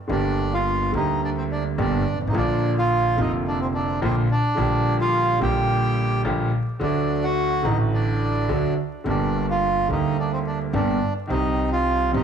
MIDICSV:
0, 0, Header, 1, 4, 480
1, 0, Start_track
1, 0, Key_signature, -2, "minor"
1, 0, Tempo, 560748
1, 79, Time_signature, 4, 2, 24, 8
1, 10473, End_track
2, 0, Start_track
2, 0, Title_t, "Bandoneon"
2, 0, Program_c, 0, 23
2, 93, Note_on_c, 0, 62, 87
2, 458, Note_on_c, 0, 65, 89
2, 459, Note_off_c, 0, 62, 0
2, 786, Note_off_c, 0, 65, 0
2, 823, Note_on_c, 0, 63, 84
2, 1038, Note_off_c, 0, 63, 0
2, 1063, Note_on_c, 0, 62, 88
2, 1112, Note_off_c, 0, 62, 0
2, 1176, Note_on_c, 0, 60, 77
2, 1228, Note_off_c, 0, 60, 0
2, 1298, Note_on_c, 0, 62, 80
2, 1404, Note_off_c, 0, 62, 0
2, 1542, Note_on_c, 0, 62, 82
2, 1870, Note_off_c, 0, 62, 0
2, 1957, Note_on_c, 0, 63, 68
2, 2012, Note_off_c, 0, 63, 0
2, 2021, Note_on_c, 0, 62, 95
2, 2349, Note_off_c, 0, 62, 0
2, 2382, Note_on_c, 0, 65, 111
2, 2740, Note_on_c, 0, 63, 89
2, 2744, Note_off_c, 0, 65, 0
2, 2844, Note_off_c, 0, 63, 0
2, 2976, Note_on_c, 0, 62, 93
2, 3082, Note_off_c, 0, 62, 0
2, 3091, Note_on_c, 0, 60, 77
2, 3143, Note_off_c, 0, 60, 0
2, 3205, Note_on_c, 0, 62, 85
2, 3426, Note_off_c, 0, 62, 0
2, 3452, Note_on_c, 0, 60, 87
2, 3557, Note_off_c, 0, 60, 0
2, 3694, Note_on_c, 0, 62, 102
2, 4252, Note_off_c, 0, 62, 0
2, 4289, Note_on_c, 0, 65, 120
2, 4618, Note_off_c, 0, 65, 0
2, 4645, Note_on_c, 0, 67, 108
2, 5322, Note_off_c, 0, 67, 0
2, 5840, Note_on_c, 0, 62, 87
2, 6197, Note_on_c, 0, 66, 117
2, 6205, Note_off_c, 0, 62, 0
2, 6548, Note_on_c, 0, 63, 86
2, 6564, Note_off_c, 0, 66, 0
2, 6657, Note_off_c, 0, 63, 0
2, 6796, Note_on_c, 0, 62, 84
2, 7482, Note_off_c, 0, 62, 0
2, 7772, Note_on_c, 0, 62, 78
2, 8100, Note_off_c, 0, 62, 0
2, 8136, Note_on_c, 0, 65, 99
2, 8461, Note_off_c, 0, 65, 0
2, 8489, Note_on_c, 0, 63, 81
2, 8706, Note_off_c, 0, 63, 0
2, 8727, Note_on_c, 0, 62, 82
2, 8833, Note_off_c, 0, 62, 0
2, 8841, Note_on_c, 0, 60, 69
2, 8894, Note_off_c, 0, 60, 0
2, 8961, Note_on_c, 0, 62, 74
2, 9068, Note_off_c, 0, 62, 0
2, 9199, Note_on_c, 0, 62, 86
2, 9532, Note_off_c, 0, 62, 0
2, 9681, Note_on_c, 0, 63, 92
2, 10013, Note_off_c, 0, 63, 0
2, 10035, Note_on_c, 0, 65, 114
2, 10369, Note_off_c, 0, 65, 0
2, 10406, Note_on_c, 0, 63, 89
2, 10473, Note_off_c, 0, 63, 0
2, 10473, End_track
3, 0, Start_track
3, 0, Title_t, "Grand piano"
3, 0, Program_c, 1, 0
3, 65, Note_on_c, 1, 50, 70
3, 75, Note_on_c, 1, 55, 58
3, 81, Note_on_c, 1, 43, 74
3, 82, Note_on_c, 1, 31, 86
3, 87, Note_on_c, 1, 58, 62
3, 99, Note_on_c, 1, 67, 77
3, 760, Note_off_c, 1, 50, 0
3, 764, Note_off_c, 1, 55, 0
3, 767, Note_off_c, 1, 43, 0
3, 768, Note_off_c, 1, 31, 0
3, 770, Note_off_c, 1, 58, 0
3, 777, Note_off_c, 1, 67, 0
3, 788, Note_on_c, 1, 50, 80
3, 805, Note_on_c, 1, 55, 61
3, 809, Note_on_c, 1, 38, 85
3, 811, Note_on_c, 1, 58, 63
3, 824, Note_on_c, 1, 67, 84
3, 1490, Note_off_c, 1, 50, 0
3, 1490, Note_off_c, 1, 55, 0
3, 1492, Note_off_c, 1, 38, 0
3, 1493, Note_off_c, 1, 58, 0
3, 1500, Note_off_c, 1, 67, 0
3, 1524, Note_on_c, 1, 31, 90
3, 1525, Note_on_c, 1, 43, 91
3, 1525, Note_on_c, 1, 50, 75
3, 1527, Note_on_c, 1, 55, 69
3, 1529, Note_on_c, 1, 67, 78
3, 1530, Note_on_c, 1, 58, 63
3, 1727, Note_off_c, 1, 31, 0
3, 1727, Note_off_c, 1, 50, 0
3, 1728, Note_off_c, 1, 43, 0
3, 1729, Note_off_c, 1, 55, 0
3, 1730, Note_off_c, 1, 58, 0
3, 1730, Note_off_c, 1, 67, 0
3, 1828, Note_on_c, 1, 31, 50
3, 1887, Note_off_c, 1, 31, 0
3, 1894, Note_on_c, 1, 32, 62
3, 1948, Note_on_c, 1, 33, 73
3, 1951, Note_off_c, 1, 32, 0
3, 1988, Note_on_c, 1, 50, 72
3, 1999, Note_on_c, 1, 53, 64
3, 2005, Note_on_c, 1, 34, 86
3, 2006, Note_on_c, 1, 46, 80
3, 2007, Note_off_c, 1, 33, 0
3, 2012, Note_on_c, 1, 58, 61
3, 2021, Note_on_c, 1, 65, 79
3, 2680, Note_off_c, 1, 50, 0
3, 2686, Note_off_c, 1, 53, 0
3, 2689, Note_off_c, 1, 34, 0
3, 2690, Note_off_c, 1, 46, 0
3, 2693, Note_off_c, 1, 58, 0
3, 2697, Note_off_c, 1, 65, 0
3, 2706, Note_on_c, 1, 50, 74
3, 2720, Note_on_c, 1, 53, 59
3, 2723, Note_on_c, 1, 41, 76
3, 2725, Note_on_c, 1, 29, 83
3, 2732, Note_on_c, 1, 58, 67
3, 2742, Note_on_c, 1, 65, 78
3, 3397, Note_off_c, 1, 50, 0
3, 3404, Note_off_c, 1, 53, 0
3, 3405, Note_off_c, 1, 41, 0
3, 3406, Note_off_c, 1, 29, 0
3, 3410, Note_off_c, 1, 58, 0
3, 3415, Note_off_c, 1, 65, 0
3, 3438, Note_on_c, 1, 34, 89
3, 3440, Note_on_c, 1, 50, 80
3, 3441, Note_on_c, 1, 53, 69
3, 3442, Note_on_c, 1, 46, 94
3, 3442, Note_on_c, 1, 58, 74
3, 3442, Note_on_c, 1, 65, 88
3, 3640, Note_off_c, 1, 34, 0
3, 3641, Note_off_c, 1, 50, 0
3, 3642, Note_off_c, 1, 46, 0
3, 3642, Note_off_c, 1, 53, 0
3, 3642, Note_off_c, 1, 65, 0
3, 3643, Note_off_c, 1, 58, 0
3, 3895, Note_on_c, 1, 50, 73
3, 3910, Note_on_c, 1, 55, 72
3, 3912, Note_on_c, 1, 46, 90
3, 3914, Note_on_c, 1, 34, 80
3, 3916, Note_on_c, 1, 58, 67
3, 3929, Note_on_c, 1, 67, 82
3, 4589, Note_off_c, 1, 50, 0
3, 4597, Note_off_c, 1, 46, 0
3, 4597, Note_off_c, 1, 55, 0
3, 4599, Note_off_c, 1, 34, 0
3, 4599, Note_off_c, 1, 58, 0
3, 4606, Note_off_c, 1, 67, 0
3, 4616, Note_on_c, 1, 50, 71
3, 4629, Note_on_c, 1, 55, 72
3, 4634, Note_on_c, 1, 34, 84
3, 4635, Note_on_c, 1, 46, 87
3, 4637, Note_on_c, 1, 58, 74
3, 4652, Note_on_c, 1, 67, 79
3, 5307, Note_off_c, 1, 50, 0
3, 5313, Note_off_c, 1, 55, 0
3, 5316, Note_off_c, 1, 34, 0
3, 5316, Note_off_c, 1, 46, 0
3, 5317, Note_off_c, 1, 58, 0
3, 5324, Note_off_c, 1, 67, 0
3, 5346, Note_on_c, 1, 50, 73
3, 5346, Note_on_c, 1, 55, 71
3, 5347, Note_on_c, 1, 34, 88
3, 5347, Note_on_c, 1, 46, 99
3, 5348, Note_on_c, 1, 58, 69
3, 5350, Note_on_c, 1, 67, 87
3, 5550, Note_off_c, 1, 50, 0
3, 5550, Note_off_c, 1, 55, 0
3, 5551, Note_off_c, 1, 34, 0
3, 5551, Note_off_c, 1, 46, 0
3, 5551, Note_off_c, 1, 58, 0
3, 5552, Note_off_c, 1, 67, 0
3, 5817, Note_on_c, 1, 50, 87
3, 5826, Note_on_c, 1, 54, 68
3, 5832, Note_on_c, 1, 38, 88
3, 5838, Note_on_c, 1, 57, 71
3, 5849, Note_on_c, 1, 66, 88
3, 6511, Note_off_c, 1, 54, 0
3, 6513, Note_off_c, 1, 50, 0
3, 6514, Note_off_c, 1, 38, 0
3, 6517, Note_off_c, 1, 57, 0
3, 6523, Note_off_c, 1, 66, 0
3, 6527, Note_on_c, 1, 50, 77
3, 6540, Note_on_c, 1, 54, 69
3, 6543, Note_on_c, 1, 33, 89
3, 6546, Note_on_c, 1, 45, 89
3, 6554, Note_on_c, 1, 57, 67
3, 6564, Note_on_c, 1, 66, 72
3, 7225, Note_off_c, 1, 50, 0
3, 7231, Note_off_c, 1, 54, 0
3, 7233, Note_off_c, 1, 33, 0
3, 7234, Note_off_c, 1, 45, 0
3, 7239, Note_off_c, 1, 57, 0
3, 7243, Note_off_c, 1, 66, 0
3, 7266, Note_on_c, 1, 54, 68
3, 7267, Note_on_c, 1, 50, 90
3, 7269, Note_on_c, 1, 38, 84
3, 7272, Note_on_c, 1, 57, 64
3, 7273, Note_on_c, 1, 66, 80
3, 7472, Note_off_c, 1, 54, 0
3, 7473, Note_off_c, 1, 38, 0
3, 7473, Note_off_c, 1, 50, 0
3, 7475, Note_off_c, 1, 57, 0
3, 7475, Note_off_c, 1, 66, 0
3, 7739, Note_on_c, 1, 50, 74
3, 7748, Note_on_c, 1, 55, 59
3, 7757, Note_on_c, 1, 31, 89
3, 7760, Note_on_c, 1, 43, 73
3, 7760, Note_on_c, 1, 58, 67
3, 7773, Note_on_c, 1, 67, 76
3, 8432, Note_off_c, 1, 50, 0
3, 8436, Note_off_c, 1, 55, 0
3, 8441, Note_off_c, 1, 31, 0
3, 8442, Note_off_c, 1, 43, 0
3, 8442, Note_off_c, 1, 58, 0
3, 8449, Note_off_c, 1, 67, 0
3, 8459, Note_on_c, 1, 50, 67
3, 8472, Note_off_c, 1, 50, 0
3, 8472, Note_on_c, 1, 55, 65
3, 8476, Note_on_c, 1, 38, 78
3, 8479, Note_on_c, 1, 50, 77
3, 8481, Note_on_c, 1, 58, 69
3, 8493, Note_on_c, 1, 67, 75
3, 9158, Note_off_c, 1, 55, 0
3, 9160, Note_off_c, 1, 38, 0
3, 9161, Note_off_c, 1, 50, 0
3, 9163, Note_off_c, 1, 58, 0
3, 9169, Note_off_c, 1, 67, 0
3, 9187, Note_on_c, 1, 43, 86
3, 9188, Note_on_c, 1, 50, 69
3, 9189, Note_on_c, 1, 55, 73
3, 9189, Note_on_c, 1, 58, 67
3, 9192, Note_on_c, 1, 31, 83
3, 9194, Note_on_c, 1, 67, 85
3, 9393, Note_off_c, 1, 43, 0
3, 9393, Note_off_c, 1, 50, 0
3, 9394, Note_off_c, 1, 55, 0
3, 9394, Note_off_c, 1, 58, 0
3, 9395, Note_off_c, 1, 31, 0
3, 9396, Note_off_c, 1, 67, 0
3, 9650, Note_on_c, 1, 51, 80
3, 9661, Note_on_c, 1, 55, 67
3, 9664, Note_on_c, 1, 36, 83
3, 9669, Note_on_c, 1, 48, 81
3, 9672, Note_on_c, 1, 60, 73
3, 9682, Note_on_c, 1, 67, 79
3, 10346, Note_off_c, 1, 51, 0
3, 10351, Note_off_c, 1, 55, 0
3, 10353, Note_off_c, 1, 36, 0
3, 10356, Note_off_c, 1, 48, 0
3, 10357, Note_off_c, 1, 60, 0
3, 10362, Note_off_c, 1, 67, 0
3, 10370, Note_on_c, 1, 51, 75
3, 10378, Note_on_c, 1, 55, 73
3, 10385, Note_on_c, 1, 43, 82
3, 10388, Note_on_c, 1, 31, 88
3, 10392, Note_on_c, 1, 60, 60
3, 10402, Note_on_c, 1, 67, 86
3, 10473, Note_off_c, 1, 31, 0
3, 10473, Note_off_c, 1, 43, 0
3, 10473, Note_off_c, 1, 51, 0
3, 10473, Note_off_c, 1, 55, 0
3, 10473, Note_off_c, 1, 60, 0
3, 10473, Note_off_c, 1, 67, 0
3, 10473, End_track
4, 0, Start_track
4, 0, Title_t, "Upright bass"
4, 0, Program_c, 2, 32
4, 80, Note_on_c, 2, 31, 89
4, 767, Note_off_c, 2, 31, 0
4, 799, Note_on_c, 2, 38, 95
4, 1487, Note_off_c, 2, 38, 0
4, 1526, Note_on_c, 2, 31, 95
4, 1728, Note_off_c, 2, 31, 0
4, 1829, Note_on_c, 2, 31, 48
4, 1884, Note_off_c, 2, 31, 0
4, 1889, Note_on_c, 2, 32, 68
4, 1940, Note_off_c, 2, 32, 0
4, 1945, Note_on_c, 2, 33, 77
4, 2000, Note_off_c, 2, 33, 0
4, 2005, Note_on_c, 2, 34, 94
4, 2689, Note_off_c, 2, 34, 0
4, 2722, Note_on_c, 2, 29, 95
4, 3405, Note_off_c, 2, 29, 0
4, 3444, Note_on_c, 2, 34, 90
4, 3644, Note_off_c, 2, 34, 0
4, 3919, Note_on_c, 2, 34, 93
4, 4601, Note_off_c, 2, 34, 0
4, 4633, Note_on_c, 2, 34, 96
4, 5315, Note_off_c, 2, 34, 0
4, 5348, Note_on_c, 2, 34, 91
4, 5551, Note_off_c, 2, 34, 0
4, 5828, Note_on_c, 2, 38, 95
4, 6512, Note_off_c, 2, 38, 0
4, 6547, Note_on_c, 2, 33, 94
4, 7235, Note_off_c, 2, 33, 0
4, 7273, Note_on_c, 2, 38, 90
4, 7475, Note_off_c, 2, 38, 0
4, 7752, Note_on_c, 2, 31, 90
4, 8439, Note_off_c, 2, 31, 0
4, 8471, Note_on_c, 2, 38, 87
4, 9157, Note_off_c, 2, 38, 0
4, 9188, Note_on_c, 2, 31, 104
4, 9393, Note_off_c, 2, 31, 0
4, 9675, Note_on_c, 2, 36, 95
4, 10358, Note_off_c, 2, 36, 0
4, 10394, Note_on_c, 2, 31, 96
4, 10473, Note_off_c, 2, 31, 0
4, 10473, End_track
0, 0, End_of_file